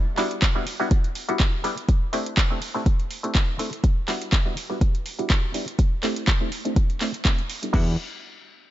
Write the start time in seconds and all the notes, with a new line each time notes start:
Already playing: G3 B3 D4 E4 A4
0.17 G3 B3 D4 E4 F#4, clap, open hi-hat
0.31 closed hi-hat
0.42 kick, clap, closed hi-hat
0.55 G3 B3 D4 E4 F#4
0.67 open hi-hat
0.80 G3 B3 D4 E4 F#4
0.91 kick, closed hi-hat
1.04 closed hi-hat
1.15 open hi-hat
1.29 G3 B3 D4 E4 F#4, closed hi-hat
1.40 kick, clap, closed hi-hat
1.64 G3 B3 D4 E4 G4, open hi-hat
1.78 closed hi-hat
1.89 kick, closed hi-hat
2.13 A3 C4 D4 E4 G4, open hi-hat
2.26 closed hi-hat
2.37 kick, clap, closed hi-hat
2.50 A3 C4 D4 E4 G4
2.62 open hi-hat
2.74 A3 C4 D4 E4 G4
2.86 kick, closed hi-hat
3.00 closed hi-hat
3.11 open hi-hat
3.23 A3 C4 D4 E4 G4, closed hi-hat
3.35 kick, clap, closed hi-hat
3.59 A3 C4 D4 E4 A4, open hi-hat
3.73 closed hi-hat
3.84 kick, closed hi-hat
4.08 G3 B3 D4 E4 F#4, clap, open hi-hat
4.22 closed hi-hat
4.33 kick, clap, closed hi-hat
4.45 G3 B3 D4 E4 F#4
4.57 open hi-hat
4.70 G3 B3 D4 E4 F#4
4.81 kick, closed hi-hat
4.95 closed hi-hat
5.06 open hi-hat
5.19 G3 B3 D4 E4 F#4, closed hi-hat
5.30 kick, clap, closed hi-hat
5.54 G3 B3 D4 E4 G4, open hi-hat
5.68 closed hi-hat
5.79 kick, closed hi-hat
6.03 A3 C4 D4 E4 G4, clap, open hi-hat
6.16 closed hi-hat
6.28 kick, clap, closed hi-hat
6.40 A3 C4 D4 E4 G4
6.52 open hi-hat
6.65 A3 C4 D4 E4 G4, closed hi-hat
6.76 kick, closed hi-hat
6.90 closed hi-hat
7.00 A3 C4 D4 E4 A4, clap, open hi-hat
7.14 closed hi-hat
7.25 A3 C4 D4 E4 G4, kick, clap, closed hi-hat
7.38 closed hi-hat
7.50 open hi-hat
7.62 G3 B3 D4 E4 A4, closed hi-hat
7.73 E2 G3 B3 D4 E4 F#4, kick, crash